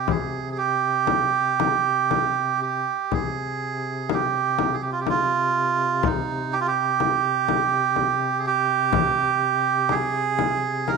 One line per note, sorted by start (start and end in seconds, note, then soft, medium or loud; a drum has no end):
0.00 2.94 C3 soft
0.00 0.12 G4 medium
0.08 0.49 G#4 medium
0.08 frame drum medium
0.51 0.57 G#4 medium
0.57 2.61 G4 medium
1.07 frame drum medium
1.60 frame drum medium
2.11 frame drum medium
2.62 3.13 G4 medium
3.11 10.97 C3 soft
3.11 4.14 G#4 medium
3.11 frame drum medium
4.10 4.76 G4 medium
4.10 frame drum medium
4.59 frame drum medium
4.73 4.82 G#4 medium
4.82 4.91 G4 medium
4.92 5.00 F4 medium
5.00 5.09 G4 medium
5.07 6.08 F4 medium
5.07 frame drum soft
6.03 6.54 D#4 medium
6.03 frame drum medium
6.53 6.60 G4 medium
6.61 6.67 F4 medium
6.67 8.45 G4 medium
7.00 frame drum soft
7.49 frame drum soft
7.96 frame drum soft
8.39 8.46 G#4 medium
8.46 9.95 G4 loud
8.93 frame drum medium
9.89 10.91 G#4 loud
9.89 frame drum soft
10.39 frame drum soft
10.88 10.97 A#4 medium
10.88 frame drum soft